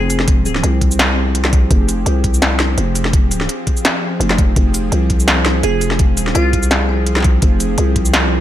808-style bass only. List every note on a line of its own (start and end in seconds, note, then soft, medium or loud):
0.00 0.62 F1 loud
0.63 1.69 C2 loud
1.71 2.05 F1 medium
2.06 2.76 C2 loud
2.78 3.48 F1 loud
4.20 4.55 F1 loud
4.56 4.91 F1 loud
4.92 5.62 C2 loud
5.64 6.14 F1 loud
6.14 6.34 E1 loud
6.35 7.41 C2 loud
7.42 7.77 F1 medium
7.78 8.40 C2 loud